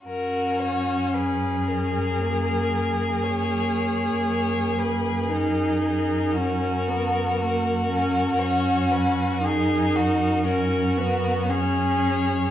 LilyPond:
<<
  \new Staff \with { instrumentName = "Violin" } { \time 4/4 \key fis \major \tempo 4 = 58 ais'8 cis''8 b'8 ais'4. cis''4 | cis''8 b'8 ais'8 ais'2~ ais'8 | cis''8 b'8 ais'4 ais'4 cis''4 | }
  \new Staff \with { instrumentName = "Violin" } { \time 4/4 \key fis \major fis'4 gis'2.~ | gis'2 fis'4 fis'4~ | fis'4 gis'8 fis'8 fis'4 gis'4 | }
  \new Staff \with { instrumentName = "Viola" } { \time 4/4 \key fis \major cis'2 ais2~ | ais4 dis'4 cis'8 b8 ais8 cis'8 | cis'4 dis'4 cis'8 b8 cis'4 | }
  \new Staff \with { instrumentName = "Cello" } { \clef bass \time 4/4 \key fis \major fis,1 | fis,1 | fis,1 | }
>>